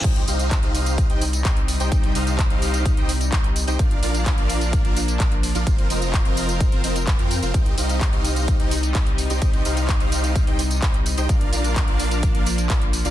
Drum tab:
CC |x---------------|----------------|----------------|----------------|
HH |xxoxxxoxxxoxxxox|xxoxxxoxxxoxxxox|xxoxxxoxxxoxxxox|xxoxxxoxxxoxxxox|
TB |x-xxx-xxx-xxx-xx|x-xxx-xxx-xxx-xx|x-xxx-xxx-xxx-xx|x-xxx-xxx-xxx-xx|
CP |----x-------x---|----x-------x---|----x-------x---|----x-------x---|
BD |o---o---o---o---|o---o---o---o---|o---o---o---o---|o---o---o---o---|

CC |----------------|----------------|----------------|
HH |xxoxxxoxxxoxxxox|xxoxxxoxxxoxxxox|xxoxxxoxxxoxxxox|
TB |x-xxx-xxx-xxx-xx|x-xxx-xxx-xxx-xx|x-xxx-xxx-xxx-xx|
CP |----x-------x---|----x-------x---|----x-------x---|
BD |o---o---o---o---|o---o---o---o---|o---o---o---o---|